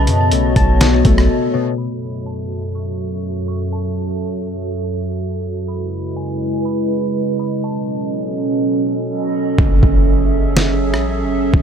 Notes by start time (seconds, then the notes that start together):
Already playing: A3 B3 F#4 A4 C#5 D#5 A5 B5
0.07 F#2 B2, closed hi-hat
0.32 B1 A3, closed hi-hat
0.56 B1 A5, kick, closed hi-hat
0.81 snare, closed hi-hat
1.05 B1 A3, kick, closed hi-hat
1.18 cross-stick
1.53 B2
1.78 F#2 F#3 F#4 A4 E5 B5
2.26 A5
2.75 C#6
3.48 C#6
3.73 A5
5.68 C#3 G#3 E4 B4 D#5 B5
6.16 G#5
6.65 B5
7.39 B5
7.63 B2 F#3 C#4 A4 A5
9.58 F#1 F#3 C#4 G#4 A4 E5, kick, impact
9.83 F#1, kick
10.57 snare
10.93 A1, cross-stick
11.23 F#1
11.54 F#1, kick